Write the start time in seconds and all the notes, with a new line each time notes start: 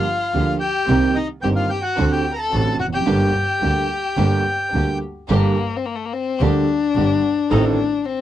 Already playing: F4 F5
0.33 D2 D3 F3 A#3 D4 F4 G4
0.60 G4 G5
0.88 C2 C3 D#3 A#3 C4 D#4 G4 A#4
1.15 D#4 D#5
1.42 G1 G2 D#3 A#3 C4 D#4 G4 A#4 G5
1.56 F4 F5
1.70 G4 G5
1.83 F#4 F#5
1.98 D2 D3 A3 C4 D4 F#4
2.11 G4 G5
2.33 A#4 A#5
2.38 A4 A5
2.52 A1 A2 D3 A3 C4 D4 F#4
2.79 F1 F#4 F#5
2.88 E2
2.92 F2 G4 G5
3.01 F#2
3.06 G1 G2 D3 G3 A#3 D4 G4
3.62 D2 D3 G3 A#3 D4 G4
4.17 G1 G2 D3 G3 A#3 D4 G4
4.73 D2 D3 G3 A#3 D4 G4
5.29 G1 G2 D3 G3 A#3 D4 G4
5.77 C4
5.86 A#3
5.95 A3
6.05 A#3
6.13 C4
6.40 D2 D3 G3 A#3 D4 G4
6.95 G1 G2 A#3 D4 G4
7.51 A1 A2 D#3 A3 C4 D#4 A4
7.65 D4
8.06 C4